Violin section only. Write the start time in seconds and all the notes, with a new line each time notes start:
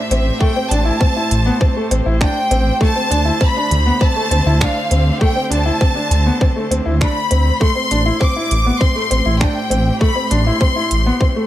Already playing: E5
0.41 G5
0.71 A5
2.22 G5
2.83 A5
3.43 B5
4.02 A5
4.62 F5
5.21 G5
5.53 A5
7.04 B5
7.62 C6
8.22 D6
8.81 C6
9.41 G5
10.01 B5
10.32 C6